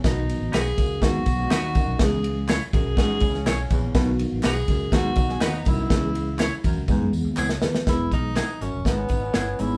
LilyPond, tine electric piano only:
<<
  \new Staff \with { instrumentName = "Tine electric piano" } { \time 4/4 \key e \major \tempo 4 = 123 r1 | r1 | r1 | r2. cis''8 <gis' b'>8~ |
<gis' b'>8 r2. r8 | }
  \new Staff \with { instrumentName = "Tine electric piano" } { \time 4/4 \key e \major <dis fis b dis' fis'>4 r4 <dis fis b dis' fis'>4 r4 | <e gis cis' e' gis'>4 r4 <e gis cis' e' gis'>4 r4 | <dis fis b dis' e' fis'>4 r4 <dis fis b dis' fis'>4 r4 | <e gis cis' e' gis'>4 r4 <e gis b e' gis'>4 r4 |
<e gis b gis'>4 r2 r8 <e gis b dis'>8 | }
>>